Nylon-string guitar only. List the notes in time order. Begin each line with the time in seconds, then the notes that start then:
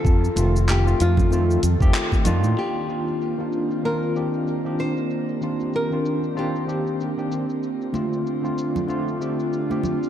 Already playing: A4
0.43 G4
0.71 G4
1.01 F4
2.59 G4
3.85 A#4
4.80 C5
5.76 A#4
6.39 G4